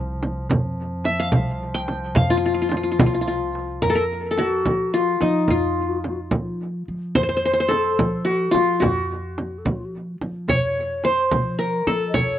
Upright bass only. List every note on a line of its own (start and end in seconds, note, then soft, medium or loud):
0.00 0.46 C2 medium
0.50 1.29 F2 medium
1.33 2.13 C2 medium
2.16 2.95 F2 medium
2.99 3.79 C2 medium
3.82 4.62 F2 medium
4.65 5.17 F3 medium
5.22 5.47 F3 medium
5.49 6.28 F2 medium
6.33 6.84 F3 medium
6.88 7.13 F3 medium
7.16 7.95 F2 medium
7.99 8.50 F3 medium
8.54 8.79 F3 medium
8.82 9.61 F2 medium
9.65 10.17 F3 medium
10.21 10.46 F3 medium
10.49 11.28 F2 medium
11.32 11.83 F3 medium
11.87 12.12 F3 medium
12.14 12.39 F2 medium